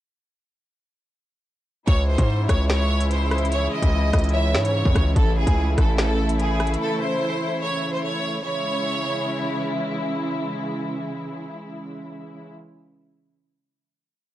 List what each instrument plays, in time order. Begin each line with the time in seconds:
1.87 808-style bass C#2, string section C#3 E3 G#3 E4, violin section C#5, kick, closed hi-hat
2.08 violin section C5
2.18 808-style bass G#2, kick, closed hi-hat
2.48 808-style bass C#2, violin section C#5, synth pluck C#5, kick, cross-stick, closed hi-hat
2.70 violin section C#5, finger snap, snare, closed hi-hat
3.00 closed hi-hat
3.10 violin section C5, closed hi-hat
3.31 cross-stick, closed hi-hat
3.38 closed hi-hat
3.45 closed hi-hat
3.52 violin section C#5, closed hi-hat
3.72 violin section D#5
3.83 808-style bass C#2, kick, closed hi-hat
4.13 808-style bass C#2, synth pluck D#5, kick, cross-stick, closed hi-hat
4.19 closed hi-hat
4.24 closed hi-hat
4.29 closed hi-hat
4.34 synth pluck C#5, violin section E5
4.54 808-style bass G#2, synth pluck C#5, finger snap, snare
4.65 violin section C#5, closed hi-hat
4.85 808-style bass E2, kick
4.95 808-style bass C#2, kick, cross-stick, closed hi-hat
5.16 808-style bass A1, string section A3 E4, violin section A4, kick, closed hi-hat
5.37 violin section G#4
5.47 808-style bass C#2, kick, closed hi-hat
5.78 808-style bass A1, violin section A4, kick, cross-stick, closed hi-hat
5.98 violin section A4, finger snap, snare, closed hi-hat
6.29 closed hi-hat
6.39 violin section G#4, closed hi-hat
6.60 cross-stick, closed hi-hat
6.67 closed hi-hat
6.74 closed hi-hat
6.81 violin section A4
7.01 violin section C5
7.62 violin section C#5
7.93 violin section C5
8.04 violin section C#5
8.45 string section C#3 E3 G#3 E4, violin section C#5